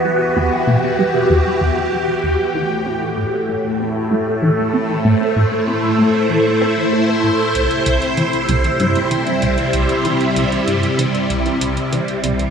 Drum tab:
HH |----------------|----------------|----------------|xxxxxxxxxxxxxxxx|
T1 |----------------|----------------|----------------|----o-----o-----|

HH |xxxxxxxxxxxxxxxx|
T1 |o-----o-----o---|